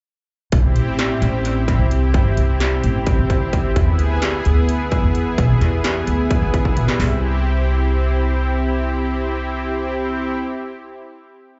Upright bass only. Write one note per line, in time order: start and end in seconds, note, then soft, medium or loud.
0.53 0.75 C2 medium
0.75 1.18 A1 medium
1.22 1.75 A1 medium
1.79 2.11 C2 medium
2.14 2.25 G2 medium
2.37 2.80 C2 medium
2.84 3.05 A1 medium
3.19 3.40 C3 medium
3.76 3.99 E2 medium
3.99 4.42 D2 medium
4.46 5.00 D2 medium
5.04 5.36 E2 medium
5.38 5.49 B1 medium
5.61 6.04 E2 medium
6.07 6.29 D2 medium
6.42 6.63 E3 medium
6.99 10.34 C2 medium